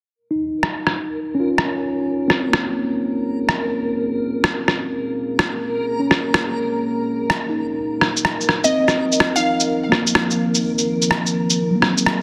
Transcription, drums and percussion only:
0.63 cross-stick
0.87 cross-stick
1.58 cross-stick
2.30 cross-stick
2.53 cross-stick
3.49 cross-stick
4.44 cross-stick
4.68 cross-stick
5.39 cross-stick
6.11 cross-stick
6.34 cross-stick
7.30 cross-stick
8.01 cross-stick
8.17 shaker
8.25 cross-stick
8.41 shaker
8.49 cross-stick
8.64 shaker
8.88 cross-stick, shaker
9.12 shaker
9.20 cross-stick
9.36 shaker
9.60 shaker
9.92 cross-stick
10.07 shaker
10.15 cross-stick
10.31 shaker
10.55 shaker
10.78 shaker
11.02 shaker
11.11 cross-stick
11.26 shaker
11.50 shaker
11.82 cross-stick
11.98 shaker
12.06 cross-stick

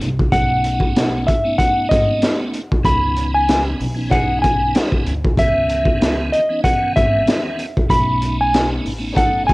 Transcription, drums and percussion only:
0.01 closed hi-hat
0.19 kick
0.32 kick, closed hi-hat
0.64 closed hi-hat
0.80 kick
0.96 snare, closed hi-hat
1.28 kick, closed hi-hat
1.59 kick, closed hi-hat
1.91 kick, snare, closed hi-hat
2.22 snare, closed hi-hat
2.54 closed hi-hat
2.72 kick
2.85 kick, closed hi-hat
3.17 closed hi-hat
3.49 snare, closed hi-hat
3.81 open hi-hat
4.11 kick, closed hi-hat
4.44 kick, closed hi-hat
4.75 snare, closed hi-hat
4.92 kick
5.06 closed hi-hat
5.24 kick
5.37 kick, closed hi-hat
5.69 closed hi-hat
5.85 kick
6.02 snare, closed hi-hat
6.33 closed hi-hat
6.64 kick, closed hi-hat
6.97 kick, closed hi-hat
7.27 snare, closed hi-hat
7.59 closed hi-hat
7.77 kick
7.90 kick, closed hi-hat
8.22 closed hi-hat
8.54 snare, closed hi-hat
8.86 open hi-hat
9.17 kick, closed hi-hat
9.49 kick, closed hi-hat

